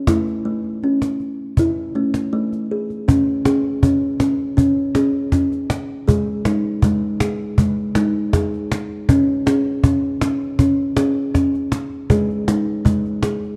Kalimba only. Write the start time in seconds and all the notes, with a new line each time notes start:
0.08 A3 E4
0.45 A3
0.84 C#4
1.59 E4
1.95 A3 C#4
2.33 A3
2.71 G#4
3.08 C#4
3.45 C#4 G#4
3.83 C#4
4.20 C#4
4.57 C#4
4.95 C#4 G#4
5.33 C#4
6.08 G#3 G#4
6.45 G#3 D#4
6.84 G#3
7.20 G#4
7.58 G#3
7.96 G#3 D#4
8.33 G#4
9.09 C#4
9.46 C#4 G#4
9.83 C#4
10.22 C#4
10.60 C#4
10.96 C#4 G#4
11.34 C#4
12.10 G#3 G#4
12.48 G#3 D#4
12.85 G#3
13.23 G#4